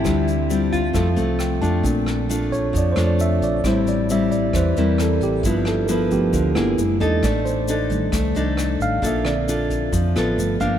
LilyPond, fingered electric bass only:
\new Staff \with { instrumentName = "Fingered electric bass" } { \clef bass \time 4/4 \key bes \lydian \tempo 4 = 134 d,2 f,8 c,4 f,8 | bes,,2 f,8 f,4 bes,,8 | a,,2 e,8 e,4 a,,8 | g,,2 d,8 g,,8 ges,,8 fes,8 |
a,,2 c,8 c,4 a,,8 | bes,,2 f,8 a,,8 g,,8 g,,8 | }